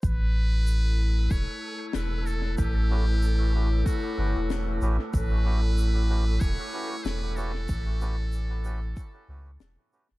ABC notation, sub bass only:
X:1
M:4/4
L:1/16
Q:"Swing 16ths" 1/4=94
K:Amix
V:1 name="Sub bass" clef=bass
A,,,8 E,,, z3 E,,,4 | A,,,8 z2 G,,, E,,,3 A,,, z | A,,,8 E,,, z3 E,,,4 | A,,,8 z2 C,,2 E,,, z2 E,,, |]